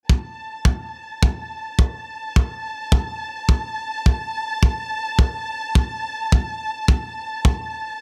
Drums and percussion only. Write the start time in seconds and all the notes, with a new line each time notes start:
0.09 kick
0.65 kick
1.23 kick
1.79 kick
2.36 kick
2.92 kick
3.49 kick
4.06 kick
4.63 kick
5.19 kick
5.75 kick
6.32 kick
6.88 kick
7.45 kick